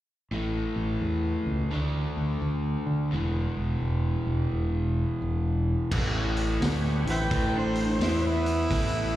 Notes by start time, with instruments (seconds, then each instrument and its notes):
0.31 fingered electric bass A1, overdriven electric guitar A2 E3 A3
0.76 fingered electric bass A1
1.01 fingered electric bass E2
1.46 fingered electric bass C#2
1.71 fingered electric bass D2, overdriven electric guitar D3 A3 D4
2.17 fingered electric bass D2
2.42 fingered electric bass D2
2.86 fingered electric bass D3
3.11 fingered electric bass E1, overdriven electric guitar E2 B2 E3
3.57 fingered electric bass E1
3.82 fingered electric bass E1
4.27 fingered electric bass E1
4.51 fingered electric bass E1
5.22 fingered electric bass E1
5.91 fingered electric bass A1, overdriven electric guitar A2 E3 A3, tonewheel organ C#4 G4 B4, kick, crash
6.37 open hi-hat
6.60 fingered electric bass D2, overdriven electric guitar D3 A3 D4, tonewheel organ G4 C#5, snare, open hi-hat
6.65 tonewheel organ B4
7.04 fingered electric bass A1, overdriven electric guitar A2 E3, open hi-hat
7.10 lead electric guitar B4, harmonica C5 E5 G5
7.31 fingered electric bass A1, overdriven electric guitar A2 E3 A3, kick, open hi-hat
7.57 lead electric guitar D4, harmonica C5
7.75 open hi-hat
7.99 fingered electric bass E2, overdriven electric guitar E3 B3 E4, tonewheel organ B3 E4 B4, harmonica C5, snare, open hi-hat
8.03 lead electric guitar E4
8.27 lead electric guitar B3, harmonica E4
8.46 open hi-hat
8.70 fingered electric bass A1, overdriven electric guitar A2 E3 A3, tonewheel organ C#4 G4, kick, open hi-hat
8.74 tonewheel organ B4